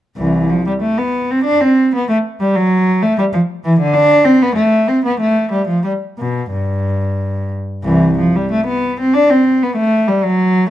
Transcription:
0, 0, Header, 1, 2, 480
1, 0, Start_track
1, 0, Key_signature, 0, "major"
1, 0, Tempo, 640342
1, 127, Time_signature, 3, 2, 24, 8
1, 1564, Tempo, 622407
1, 3964, Tempo, 658617
1, 6844, Tempo, 622407
1, 8039, End_track
2, 0, Start_track
2, 0, Title_t, "Cello"
2, 0, Program_c, 0, 42
2, 125, Note_on_c, 0, 36, 55
2, 126, Note_on_c, 0, 52, 67
2, 353, Note_off_c, 0, 36, 0
2, 353, Note_off_c, 0, 52, 0
2, 375, Note_on_c, 0, 53, 67
2, 495, Note_off_c, 0, 53, 0
2, 499, Note_on_c, 0, 55, 63
2, 546, Note_off_c, 0, 55, 0
2, 610, Note_on_c, 0, 57, 67
2, 729, Note_off_c, 0, 57, 0
2, 735, Note_on_c, 0, 59, 65
2, 972, Note_off_c, 0, 59, 0
2, 983, Note_on_c, 0, 60, 72
2, 1082, Note_on_c, 0, 62, 79
2, 1096, Note_off_c, 0, 60, 0
2, 1202, Note_off_c, 0, 62, 0
2, 1206, Note_on_c, 0, 60, 72
2, 1445, Note_off_c, 0, 60, 0
2, 1462, Note_on_c, 0, 59, 71
2, 1568, Note_on_c, 0, 57, 89
2, 1571, Note_off_c, 0, 59, 0
2, 1629, Note_off_c, 0, 57, 0
2, 1808, Note_on_c, 0, 55, 77
2, 1925, Note_off_c, 0, 55, 0
2, 1927, Note_on_c, 0, 54, 88
2, 2284, Note_off_c, 0, 54, 0
2, 2285, Note_on_c, 0, 57, 83
2, 2402, Note_off_c, 0, 57, 0
2, 2411, Note_on_c, 0, 55, 80
2, 2456, Note_off_c, 0, 55, 0
2, 2524, Note_on_c, 0, 53, 79
2, 2586, Note_off_c, 0, 53, 0
2, 2766, Note_on_c, 0, 52, 81
2, 2877, Note_off_c, 0, 52, 0
2, 2885, Note_on_c, 0, 50, 81
2, 2993, Note_on_c, 0, 62, 93
2, 2996, Note_off_c, 0, 50, 0
2, 3232, Note_off_c, 0, 62, 0
2, 3232, Note_on_c, 0, 60, 78
2, 3352, Note_off_c, 0, 60, 0
2, 3366, Note_on_c, 0, 59, 85
2, 3472, Note_on_c, 0, 57, 79
2, 3480, Note_off_c, 0, 59, 0
2, 3712, Note_off_c, 0, 57, 0
2, 3719, Note_on_c, 0, 60, 70
2, 3841, Note_off_c, 0, 60, 0
2, 3851, Note_on_c, 0, 59, 65
2, 3967, Note_off_c, 0, 59, 0
2, 3969, Note_on_c, 0, 57, 70
2, 4197, Note_off_c, 0, 57, 0
2, 4198, Note_on_c, 0, 55, 59
2, 4315, Note_off_c, 0, 55, 0
2, 4316, Note_on_c, 0, 53, 58
2, 4432, Note_on_c, 0, 55, 62
2, 4435, Note_off_c, 0, 53, 0
2, 4491, Note_off_c, 0, 55, 0
2, 4683, Note_on_c, 0, 47, 58
2, 4918, Note_off_c, 0, 47, 0
2, 4928, Note_on_c, 0, 43, 55
2, 5635, Note_off_c, 0, 43, 0
2, 5888, Note_on_c, 0, 52, 75
2, 5889, Note_on_c, 0, 36, 58
2, 6112, Note_off_c, 0, 36, 0
2, 6112, Note_off_c, 0, 52, 0
2, 6138, Note_on_c, 0, 53, 64
2, 6252, Note_off_c, 0, 53, 0
2, 6267, Note_on_c, 0, 55, 62
2, 6378, Note_off_c, 0, 55, 0
2, 6383, Note_on_c, 0, 57, 74
2, 6493, Note_off_c, 0, 57, 0
2, 6495, Note_on_c, 0, 59, 70
2, 6724, Note_off_c, 0, 59, 0
2, 6736, Note_on_c, 0, 60, 73
2, 6837, Note_on_c, 0, 62, 82
2, 6846, Note_off_c, 0, 60, 0
2, 6960, Note_on_c, 0, 60, 74
2, 6962, Note_off_c, 0, 62, 0
2, 7205, Note_off_c, 0, 60, 0
2, 7212, Note_on_c, 0, 59, 72
2, 7321, Note_on_c, 0, 57, 89
2, 7330, Note_off_c, 0, 59, 0
2, 7557, Note_off_c, 0, 57, 0
2, 7559, Note_on_c, 0, 55, 79
2, 7681, Note_off_c, 0, 55, 0
2, 7683, Note_on_c, 0, 54, 92
2, 8039, Note_off_c, 0, 54, 0
2, 8039, End_track
0, 0, End_of_file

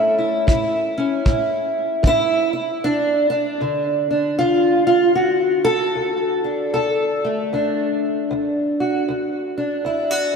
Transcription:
0, 0, Header, 1, 3, 480
1, 0, Start_track
1, 0, Key_signature, 2, "major"
1, 0, Tempo, 784314
1, 1727, Time_signature, 4, 2, 24, 8
1, 6338, End_track
2, 0, Start_track
2, 0, Title_t, "Steel-string acoustic guitar"
2, 0, Program_c, 0, 25
2, 0, Note_on_c, 0, 45, 85
2, 0, Note_on_c, 0, 57, 57
2, 0, Note_on_c, 0, 61, 53
2, 0, Note_on_c, 0, 64, 58
2, 0, Note_on_c, 0, 69, 111
2, 106, Note_off_c, 0, 64, 0
2, 113, Note_on_c, 0, 64, 49
2, 141, Note_off_c, 0, 69, 0
2, 254, Note_off_c, 0, 45, 0
2, 282, Note_off_c, 0, 64, 0
2, 287, Note_on_c, 0, 45, 81
2, 291, Note_on_c, 0, 64, 53
2, 590, Note_off_c, 0, 61, 0
2, 597, Note_on_c, 0, 61, 57
2, 731, Note_off_c, 0, 45, 0
2, 767, Note_off_c, 0, 64, 0
2, 768, Note_on_c, 0, 45, 77
2, 774, Note_on_c, 0, 64, 54
2, 1211, Note_off_c, 0, 45, 0
2, 1242, Note_on_c, 0, 45, 89
2, 1261, Note_off_c, 0, 64, 0
2, 1268, Note_on_c, 0, 64, 122
2, 1541, Note_off_c, 0, 64, 0
2, 1549, Note_on_c, 0, 64, 53
2, 1688, Note_off_c, 0, 45, 0
2, 1710, Note_off_c, 0, 57, 0
2, 1710, Note_off_c, 0, 61, 0
2, 1729, Note_off_c, 0, 64, 0
2, 1739, Note_on_c, 0, 62, 92
2, 1740, Note_on_c, 0, 38, 74
2, 2011, Note_off_c, 0, 62, 0
2, 2019, Note_on_c, 0, 62, 83
2, 2177, Note_off_c, 0, 38, 0
2, 2206, Note_on_c, 0, 38, 76
2, 2211, Note_on_c, 0, 50, 48
2, 2502, Note_off_c, 0, 62, 0
2, 2513, Note_on_c, 0, 62, 49
2, 2650, Note_off_c, 0, 38, 0
2, 2681, Note_off_c, 0, 62, 0
2, 2684, Note_on_c, 0, 65, 99
2, 2697, Note_on_c, 0, 38, 81
2, 2972, Note_off_c, 0, 65, 0
2, 2979, Note_on_c, 0, 65, 89
2, 3136, Note_off_c, 0, 38, 0
2, 3152, Note_off_c, 0, 65, 0
2, 3154, Note_on_c, 0, 66, 92
2, 3165, Note_on_c, 0, 38, 72
2, 3455, Note_on_c, 0, 69, 119
2, 3610, Note_off_c, 0, 38, 0
2, 3643, Note_on_c, 0, 38, 71
2, 3939, Note_off_c, 0, 66, 0
2, 3944, Note_on_c, 0, 62, 44
2, 4089, Note_off_c, 0, 38, 0
2, 4116, Note_off_c, 0, 69, 0
2, 4123, Note_on_c, 0, 69, 92
2, 4132, Note_on_c, 0, 38, 74
2, 4434, Note_on_c, 0, 57, 51
2, 4574, Note_off_c, 0, 38, 0
2, 4607, Note_on_c, 0, 38, 77
2, 4610, Note_off_c, 0, 62, 0
2, 4612, Note_on_c, 0, 62, 51
2, 5051, Note_off_c, 0, 38, 0
2, 5084, Note_on_c, 0, 38, 80
2, 5384, Note_off_c, 0, 69, 0
2, 5387, Note_on_c, 0, 66, 52
2, 5530, Note_off_c, 0, 38, 0
2, 5560, Note_on_c, 0, 38, 77
2, 5570, Note_off_c, 0, 50, 0
2, 5858, Note_off_c, 0, 62, 0
2, 5860, Note_on_c, 0, 62, 53
2, 6008, Note_off_c, 0, 38, 0
2, 6026, Note_on_c, 0, 38, 75
2, 6031, Note_off_c, 0, 66, 0
2, 6033, Note_on_c, 0, 64, 58
2, 6185, Note_off_c, 0, 64, 0
2, 6185, Note_on_c, 0, 66, 55
2, 6325, Note_off_c, 0, 57, 0
2, 6338, Note_off_c, 0, 38, 0
2, 6338, Note_off_c, 0, 62, 0
2, 6338, Note_off_c, 0, 66, 0
2, 6338, End_track
3, 0, Start_track
3, 0, Title_t, "Drums"
3, 293, Note_on_c, 9, 36, 70
3, 355, Note_off_c, 9, 36, 0
3, 771, Note_on_c, 9, 36, 70
3, 832, Note_off_c, 9, 36, 0
3, 1248, Note_on_c, 9, 36, 70
3, 1309, Note_off_c, 9, 36, 0
3, 6338, End_track
0, 0, End_of_file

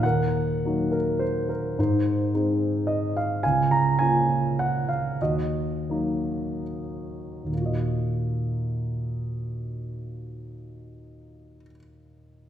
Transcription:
0, 0, Header, 1, 2, 480
1, 0, Start_track
1, 0, Tempo, 580833
1, 33, Time_signature, 3, 2, 24, 8
1, 1473, Tempo, 558140
1, 3873, Tempo, 625000
1, 4353, Tempo, 674916
1, 4833, Tempo, 773196
1, 5313, Tempo, 875912
1, 6273, Tempo, 832178
1, 8636, End_track
2, 0, Start_track
2, 0, Title_t, "Grand piano"
2, 0, Program_c, 0, 0
2, 0, Control_c, 0, 64, 127
2, 27, Note_on_c, 0, 78, 71
2, 44, Control_c, 0, 64, 0
2, 50, Note_on_c, 0, 70, 50
2, 63, Note_on_c, 0, 39, 40
2, 166, Control_c, 0, 64, 127
2, 540, Note_on_c, 0, 54, 34
2, 541, Note_on_c, 0, 58, 31
2, 549, Note_on_c, 0, 63, 39
2, 739, Note_off_c, 0, 70, 0
2, 758, Note_on_c, 0, 70, 54
2, 783, Note_off_c, 0, 78, 0
2, 987, Note_on_c, 0, 72, 59
2, 1008, Note_off_c, 0, 70, 0
2, 1233, Note_on_c, 0, 70, 53
2, 1239, Note_off_c, 0, 72, 0
2, 1453, Note_off_c, 0, 70, 0
2, 1454, Note_off_c, 0, 54, 0
2, 1455, Note_off_c, 0, 39, 0
2, 1455, Note_off_c, 0, 58, 0
2, 1459, Note_off_c, 0, 63, 0
2, 1478, Note_on_c, 0, 44, 45
2, 1479, Note_on_c, 0, 63, 39
2, 1485, Control_c, 0, 64, 0
2, 1486, Note_on_c, 0, 72, 57
2, 1638, Control_c, 0, 64, 127
2, 1919, Note_off_c, 0, 72, 0
2, 1946, Note_off_c, 0, 63, 0
2, 1957, Note_on_c, 0, 56, 35
2, 1959, Note_on_c, 0, 60, 30
2, 1959, Note_on_c, 0, 63, 40
2, 2408, Note_on_c, 0, 75, 59
2, 2657, Note_off_c, 0, 75, 0
2, 2663, Note_on_c, 0, 77, 58
2, 2860, Note_off_c, 0, 44, 0
2, 2870, Note_off_c, 0, 56, 0
2, 2871, Note_off_c, 0, 60, 0
2, 2871, Note_off_c, 0, 63, 0
2, 2881, Note_off_c, 0, 77, 0
2, 2892, Note_on_c, 0, 80, 74
2, 2894, Note_on_c, 0, 77, 55
2, 2904, Control_c, 0, 64, 0
2, 2915, Note_on_c, 0, 37, 44
2, 3035, Control_c, 0, 64, 127
2, 3133, Note_on_c, 0, 82, 69
2, 3139, Note_off_c, 0, 80, 0
2, 3369, Note_on_c, 0, 80, 74
2, 3381, Note_off_c, 0, 82, 0
2, 3385, Note_on_c, 0, 58, 35
2, 3392, Note_on_c, 0, 65, 40
2, 3394, Note_on_c, 0, 61, 33
2, 3585, Note_off_c, 0, 77, 0
2, 3837, Note_off_c, 0, 80, 0
2, 3888, Note_on_c, 0, 78, 68
2, 4113, Note_on_c, 0, 77, 55
2, 4123, Note_off_c, 0, 78, 0
2, 4331, Note_off_c, 0, 58, 0
2, 4333, Note_off_c, 0, 37, 0
2, 4334, Note_off_c, 0, 65, 0
2, 4335, Note_off_c, 0, 61, 0
2, 4362, Note_off_c, 0, 77, 0
2, 4362, Control_c, 0, 64, 0
2, 4363, Note_on_c, 0, 39, 44
2, 4364, Note_on_c, 0, 66, 39
2, 4368, Note_on_c, 0, 75, 56
2, 4473, Control_c, 0, 64, 127
2, 4848, Note_on_c, 0, 54, 30
2, 4849, Note_on_c, 0, 58, 28
2, 4856, Note_on_c, 0, 63, 34
2, 5293, Note_off_c, 0, 66, 0
2, 5294, Note_off_c, 0, 75, 0
2, 5740, Note_off_c, 0, 39, 0
2, 5748, Note_on_c, 0, 39, 28
2, 5773, Note_on_c, 0, 46, 23
2, 5779, Note_off_c, 0, 54, 0
2, 5779, Note_off_c, 0, 58, 0
2, 5782, Note_off_c, 0, 63, 0
2, 5797, Note_on_c, 0, 58, 24
2, 5802, Control_c, 0, 64, 0
2, 5819, Note_on_c, 0, 63, 23
2, 5845, Note_on_c, 0, 66, 25
2, 5867, Note_on_c, 0, 75, 29
2, 5900, Control_c, 0, 64, 127
2, 8103, Note_off_c, 0, 39, 0
2, 8129, Note_off_c, 0, 46, 0
2, 8155, Note_off_c, 0, 58, 0
2, 8178, Note_off_c, 0, 63, 0
2, 8205, Note_off_c, 0, 66, 0
2, 8229, Note_off_c, 0, 75, 0
2, 8636, End_track
0, 0, End_of_file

